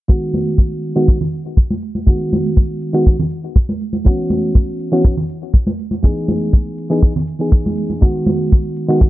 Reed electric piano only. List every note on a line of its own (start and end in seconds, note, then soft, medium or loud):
0.08 0.92 D#3 medium
0.08 0.93 G#3 medium
0.08 0.93 B3 medium
0.08 0.93 F#4 medium
0.95 1.17 D#3 medium
0.95 1.17 G#3 medium
0.95 1.17 B3 medium
0.95 1.18 F#4 medium
2.06 2.91 D#3 medium
2.06 2.91 G#3 medium
2.06 2.91 B3 medium
2.06 2.92 F#4 medium
2.93 3.15 D#3 medium
2.93 3.16 G#3 medium
2.93 3.16 B3 medium
2.93 3.16 F#4 medium
4.04 4.89 E3 medium
4.04 4.89 B3 medium
4.04 4.89 C#4 medium
4.04 4.90 F#4 medium
4.92 5.14 E3 medium
4.92 5.14 B3 medium
4.92 5.14 C#4 medium
4.92 5.14 F#4 medium
6.03 6.87 E3 medium
6.03 6.88 B3 medium
6.03 6.88 D#4 medium
6.03 6.88 G#4 medium
6.90 7.12 E3 medium
6.90 7.12 B3 medium
6.90 7.12 D#4 medium
6.90 7.12 G#4 medium
7.39 7.99 E3 medium
7.39 7.99 B3 medium
7.39 7.99 D#4 medium
7.39 8.00 G#4 medium
8.01 8.85 D#3 medium
8.01 8.86 G#3 medium
8.01 8.86 B3 medium
8.01 8.87 F#4 medium
8.88 9.10 D#3 medium
8.88 9.10 G#3 medium
8.88 9.10 B3 medium
8.88 9.10 F#4 medium